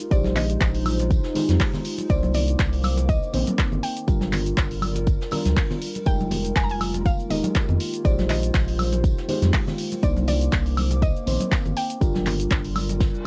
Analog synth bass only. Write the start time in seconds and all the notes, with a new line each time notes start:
0.11 A#1
0.61 A#1
1.49 F2
2.10 C2
2.59 C2
3.34 A#1
3.72 G1
4.08 G1
4.58 G1
5.45 D2
6.06 F1
6.56 F1
7.30 D#1
7.69 F2
8.05 A#1
8.54 A#1
9.42 F2
10.03 C2
10.53 C2
11.27 A#1
11.65 G1
12.01 G1
12.51 G1